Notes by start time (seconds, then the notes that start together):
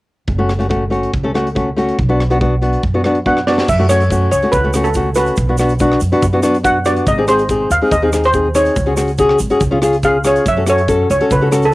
0.28 F#1, kick, closed hi-hat
0.38 A3 C#4 F#4
0.50 cross-stick, closed hi-hat
0.59 A3 C#4 F#4, closed hi-hat
0.69 A3 C#4 F#4, kick, closed hi-hat
0.90 A3 C#4 F#4, closed hi-hat
1.03 closed hi-hat
1.14 C#2, kick, closed hi-hat
1.23 A3 C#4 A4
1.34 A3 C#4 F#4, cross-stick, closed hi-hat
1.47 closed hi-hat
1.55 A3 C#4 F#4, kick, closed hi-hat
1.76 A3 C#4 F#4, closed hi-hat
1.89 closed hi-hat
1.99 B1, kick, closed hi-hat
2.09 B3 D4 F#4
2.20 cross-stick, closed hi-hat
2.30 B3 D4 F#4, closed hi-hat
2.41 B3 D4 F#4, kick, closed hi-hat
2.62 B3 D4 F#4, closed hi-hat
2.73 closed hi-hat
2.83 F#2, kick, closed hi-hat
2.94 B3 D4 F#4
3.04 B3 D4 F#4, cross-stick, closed hi-hat
3.15 closed hi-hat
3.25 B3 D4 F#4 F#5, kick, closed hi-hat
3.37 cross-stick
3.47 B3 D4 F#4 D5, snare
3.58 snare
3.68 F#2 E5, kick, crash, shaker
3.79 A3 C#4 F#4
3.89 A3 C#4 F#4 C#5, cross-stick, closed hi-hat, shaker
4.00 closed hi-hat, shaker
4.10 A3 C#4 F#4, kick, closed hi-hat, shaker
4.31 C#2 C#5, closed hi-hat, shaker
4.42 A3 C#4 F#4, closed hi-hat
4.52 C#2 B4, kick, closed hi-hat, shaker
4.64 A3 C#4 F#4
4.73 A3 C#4 F#4, cross-stick, closed hi-hat, shaker
4.84 A4, closed hi-hat, shaker
4.94 A3 C#4 F#4, kick, closed hi-hat, shaker
5.15 A3 C#4 F#4 B4, cross-stick, closed hi-hat, shaker
5.26 closed hi-hat, shaker
5.36 B1, kick, closed hi-hat, shaker
5.49 B3 D4 F#4
5.57 B3 D4 F#4, cross-stick, closed hi-hat, shaker
5.69 closed hi-hat, shaker
5.79 B3 D4 F#4, kick, closed hi-hat, shaker
5.91 cross-stick
6.00 F#2, closed hi-hat, shaker
6.12 B3 D4 F#4, closed hi-hat
6.22 F#2, kick, closed hi-hat, shaker
6.33 B3 D4 F#4
6.42 B3 D4 F#4, cross-stick, closed hi-hat, shaker
6.54 closed hi-hat, shaker
6.63 B3 D4 F#4 F#5, kick, closed hi-hat, shaker
6.85 B3 D4 F#4 D5, cross-stick, closed hi-hat, shaker
6.96 closed hi-hat, shaker
7.07 G#1 D#5, kick, closed hi-hat, shaker
7.18 C4 D#4 G#4
7.28 C4 D#4 G#4 C5, cross-stick, closed hi-hat, shaker
7.39 closed hi-hat, shaker
7.49 C4 D#4 G#4, kick, closed hi-hat, shaker
7.70 D#2 F5, closed hi-hat, shaker
7.82 C4 D#4 G#4, closed hi-hat
7.92 D#2 D#5, kick, closed hi-hat, shaker
8.02 C4 D#4 G#4
8.13 C4 D#4 G#4, cross-stick, closed hi-hat, shaker
8.24 C5, closed hi-hat, shaker
8.33 C4 D#4 G#4, kick, closed hi-hat, shaker
8.55 C4 D#4 G#4 C#5, cross-stick, closed hi-hat, shaker
8.65 closed hi-hat, shaker
8.76 C#2, kick, closed hi-hat, shaker
8.86 C#4 F#4 G#4
8.96 C#4 F#4 G#4, cross-stick, closed hi-hat, shaker
9.08 closed hi-hat, shaker
9.18 C#4 F#4 G#4, kick, closed hi-hat, shaker
9.29 cross-stick
9.39 G#1, closed hi-hat, shaker
9.50 C#4 F#4 G#4, closed hi-hat, shaker
9.60 C#2, kick, closed hi-hat, shaker
9.71 C#4 F4 G#4
9.82 C#4 F4 G#4, cross-stick, closed hi-hat, shaker
9.93 closed hi-hat, shaker
10.03 C#4 F4 G#4 F5, kick, closed hi-hat, shaker
10.24 C#4 F4 G#4 C#5, cross-stick, closed hi-hat, shaker
10.36 closed hi-hat, shaker
10.46 F#2 E5, kick, closed hi-hat, shaker
10.57 C#4 F#4 A4
10.66 C#4 F#4 A4 C#5, cross-stick, closed hi-hat, shaker
10.78 closed hi-hat, shaker
10.88 C#4 F#4 A4, kick, closed hi-hat, shaker
11.10 C#2 C#5, closed hi-hat, shaker
11.20 C#4 F#4 A4, closed hi-hat
11.31 C#2 B4, kick, closed hi-hat, shaker
11.41 C#4 F#4 A4
11.51 C#4 F#4 A4, cross-stick, closed hi-hat, shaker
11.62 A4, closed hi-hat, shaker